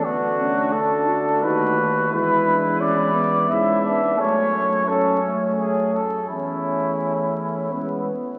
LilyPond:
<<
  \new Staff \with { instrumentName = "Cornet" } { \time 3/4 \key e \mixolydian \tempo 4 = 87 fis'4 a'4 b'4 | b'4 d''4 e''4 | cis''4 a'8 r8 gis'8 a'8 | e'2~ e'8 r8 | }
  \new Staff \with { instrumentName = "Flugelhorn" } { \time 3/4 \key e \mixolydian d'4 d'4 fis'4 | e'2 e'8 d'8 | cis'4 cis'4. r8 | cis'2 b8 r8 | }
  \new Staff \with { instrumentName = "French horn" } { \time 3/4 \key e \mixolydian b8 cis'8 d'8 fis'8 dis'8 fis'8 | e'8 d'8 cis'8 b8 cis'8 b8 | a4 cis'8 a4 r8 | cis'2 b4 | }
  \new Staff \with { instrumentName = "Euphonium" } { \time 3/4 \key e \mixolydian a4 a4 a4 | gis2 gis4 | a4 a4. r8 | a2 gis8 r8 | }
  \new Staff \with { instrumentName = "Tuba" } { \clef bass \time 3/4 \key e \mixolydian d,2 dis,4 | e,2 gis,4 | fis,2~ fis,8 r8 | e,2 e,8 r8 | }
>>